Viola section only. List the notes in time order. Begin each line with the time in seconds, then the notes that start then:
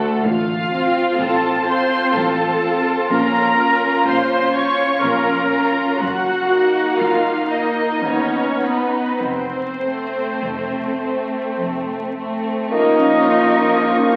0.26 F4
1.21 A4
1.68 C5
2.16 A4
3.13 A#4
4.08 C5
4.54 C#5
5.03 A#4
6.00 F#4
6.99 F4
7.51 D#4
8.05 C#4
8.64 B3
9.24 C4
12.72 F3